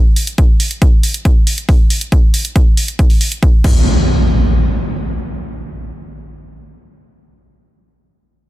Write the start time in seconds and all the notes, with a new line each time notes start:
0.16 open hi-hat
0.27 closed hi-hat
0.38 kick, closed hi-hat
0.60 open hi-hat
0.71 closed hi-hat
0.82 kick, closed hi-hat
1.03 open hi-hat
1.14 closed hi-hat
1.25 kick, closed hi-hat
1.47 open hi-hat
1.58 closed hi-hat
1.69 kick, open hi-hat
1.90 open hi-hat
2.01 closed hi-hat
2.12 kick, closed hi-hat
2.34 open hi-hat
2.45 closed hi-hat
2.56 kick, closed hi-hat
2.77 open hi-hat
2.88 closed hi-hat
2.99 kick, closed hi-hat
3.10 open hi-hat
3.21 open hi-hat
3.32 closed hi-hat
3.43 kick, closed hi-hat
3.64 kick, crash, impact